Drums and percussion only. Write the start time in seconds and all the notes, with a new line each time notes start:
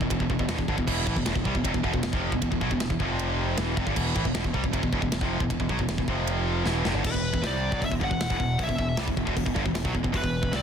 0.01 kick
0.10 kick, ride bell
0.20 kick
0.30 kick
0.39 kick
0.49 snare, ride bell
0.58 kick
0.68 kick
0.78 kick
0.88 kick, crash
1.07 kick
1.16 kick
1.26 snare, ride bell
1.36 kick
1.45 kick
1.55 kick
1.65 kick, ride bell
1.74 kick
1.84 kick
1.94 kick
2.03 snare, ride bell
2.13 kick
2.32 kick
2.42 kick, ride bell
2.52 kick
2.61 kick
2.71 kick
2.80 snare, ride bell
2.90 kick
3.00 kick
3.19 ride bell
3.58 snare, ride bell
3.77 kick
3.87 kick
3.96 kick, crash
4.16 kick
4.25 kick
4.35 snare, ride bell
4.44 kick
4.54 kick
4.64 kick
4.73 kick, ride bell
4.83 kick
4.93 kick
5.02 kick
5.12 snare, ride bell
5.21 kick
5.40 kick
5.50 kick, ride bell
5.60 kick
5.69 kick
5.79 kick
5.89 snare, ride bell
5.98 kick
6.08 kick
6.27 ride bell
6.66 snare
6.85 snare
7.05 kick, crash
7.14 kick
7.34 kick
7.44 snare, open hi-hat
7.72 kick
7.82 kick, open hi-hat
7.92 kick
8.01 kick
8.11 kick
8.21 snare, open hi-hat
8.30 kick
8.40 kick
8.59 kick, open hi-hat
8.69 kick
8.79 kick
8.97 snare, open hi-hat
9.08 kick
9.17 kick
9.27 kick
9.37 kick, open hi-hat
9.46 kick
9.56 kick
9.66 kick
9.75 snare, open hi-hat
9.85 kick
9.95 kick
10.04 kick
10.14 kick, open hi-hat
10.24 kick
10.43 kick
10.53 snare, open hi-hat